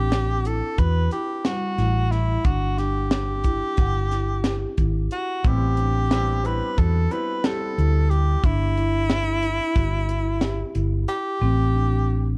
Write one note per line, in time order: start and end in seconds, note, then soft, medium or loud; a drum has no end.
0.00 0.61 A1 medium
0.00 0.36 D4 medium
0.00 0.48 G4 loud
0.12 snare loud
0.12 closed hi-hat medium
0.45 0.74 E4 medium
0.45 0.81 A4 medium
0.45 closed hi-hat medium
0.78 1.07 E2 medium
0.78 1.08 F#4 medium
0.78 1.12 B4 loud
0.78 kick loud
0.78 closed hi-hat medium
1.11 1.41 E4 medium
1.11 1.47 G4 medium
1.11 closed hi-hat medium
1.45 1.75 G3 medium
1.45 2.13 F#4 medium
1.45 snare loud
1.45 closed hi-hat medium
1.78 2.36 A1 medium
1.78 2.36 E4 medium
1.78 snare soft
1.78 closed hi-hat soft
2.12 2.47 E4 medium
2.12 snare soft
2.12 closed hi-hat soft
2.44 3.60 G1 medium
2.44 2.74 D4 medium
2.44 2.80 F#4 loud
2.44 kick loud
2.44 closed hi-hat medium
2.78 3.36 D4 medium
2.78 3.12 G4 medium
2.78 snare soft
2.78 closed hi-hat medium
3.11 4.81 G4 medium
3.11 snare loud
3.11 closed hi-hat medium
3.44 3.74 E4 medium
3.44 kick medium
3.44 closed hi-hat medium
3.77 4.65 G1 medium
3.77 4.07 F#5 medium
3.77 kick medium
3.77 snare soft
3.77 closed hi-hat medium
4.11 4.41 E4 medium
4.11 snare soft
4.11 closed hi-hat medium
4.44 4.74 G4 medium
4.44 snare medium
4.44 closed hi-hat medium
4.78 5.07 G#1 medium
4.78 5.36 E4 medium
4.78 kick medium
4.78 closed hi-hat medium
5.11 5.49 F#4 medium
5.11 closed hi-hat medium
5.44 6.60 A1 medium
5.44 5.96 G3 medium
5.44 5.96 B3 medium
5.44 5.96 C4 medium
5.44 5.74 C4 medium
5.44 5.96 E4 medium
5.44 6.48 G4 loud
5.44 kick loud
5.44 closed hi-hat medium
5.77 6.36 D4 medium
5.77 closed hi-hat medium
6.11 6.37 G3 medium
6.11 6.37 B3 medium
6.11 6.37 C4 medium
6.11 6.37 E4 medium
6.11 snare loud
6.11 closed hi-hat medium
6.43 6.95 G3 medium
6.43 6.95 B3 medium
6.43 6.95 C4 medium
6.43 6.95 E4 medium
6.43 6.74 E4 medium
6.43 6.80 B4 medium
6.43 closed hi-hat medium
6.78 7.07 E2 medium
6.78 7.07 F#4 medium
6.78 7.14 A4 medium
6.78 kick medium
6.78 closed hi-hat medium
7.10 7.36 G3 medium
7.10 7.37 B3 medium
7.10 7.37 C4 medium
7.10 7.40 E4 medium
7.10 7.37 E4 medium
7.10 7.47 B4 medium
7.10 closed hi-hat medium
7.44 8.44 G3 medium
7.44 8.44 B3 medium
7.44 8.44 C4 medium
7.44 8.45 E4 medium
7.44 7.73 G4 medium
7.44 8.12 A4 medium
7.44 snare loud
7.44 closed hi-hat medium
7.78 8.35 D2 medium
7.78 8.35 E4 medium
7.78 closed hi-hat soft
8.10 8.47 G4 medium
8.10 closed hi-hat medium
8.43 9.58 G1 loud
8.43 8.73 D4 medium
8.43 10.82 E4 loud
8.43 kick loud
8.43 closed hi-hat medium
8.77 9.34 E4 medium
8.77 closed hi-hat medium
9.10 snare loud
9.10 closed hi-hat medium
9.43 9.72 E4 medium
9.43 closed hi-hat medium
9.76 10.62 G1 medium
9.76 10.05 F#4 medium
9.76 kick medium
9.76 closed hi-hat medium
10.09 10.38 E4 medium
10.09 closed hi-hat medium
10.41 10.70 G4 medium
10.41 snare medium
10.41 closed hi-hat medium
10.74 11.04 G1 medium
10.74 11.32 E4 medium
10.74 closed hi-hat medium
11.08 12.37 G4 medium
11.08 closed hi-hat medium
11.41 12.38 A1 medium
11.41 11.70 C4 medium
11.74 12.31 D4 medium